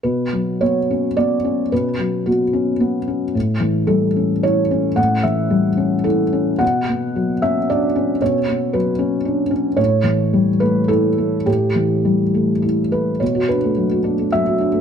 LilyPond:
<<
  \new Staff \with { instrumentName = "Felt piano" } { \time 3/4 \key b \minor \tempo 4 = 110 b'4 cis''4 d''4 | b'4 fis'2 | r4 a'4 cis''4 | fis''8 e''4. a'4 |
fis''4. e''8 d''4 | cis''4 b'4. r8 | cis''4. b'8 a'4 | g'2 r8 b'8 |
cis''8 b'4. e''4 | }
  \new Staff \with { instrumentName = "Felt piano" } { \time 3/4 \key b \minor b,8 fis8 b8 cis'8 b8 cis'8 | b,8 fis8 b8 cis'8 b8 cis'8 | a,8 e8 g8 cis'8 e'8 cis'8 | a,8 e8 g8 cis'8 e'8 cis'8 |
b,8 b8 fis8 cis'8 d'8 cis'8 | b,8 b8 fis8 cis'8 d'8 cis'8 | a,8 e8 g8 a8 e'8 a8 | a,8 e8 g8 a8 e'8 a8 |
b,16 fis'16 d'16 a16 fis16 fis'16 d'16 a16 fis16 fis'16 d'16 a16 | }
>>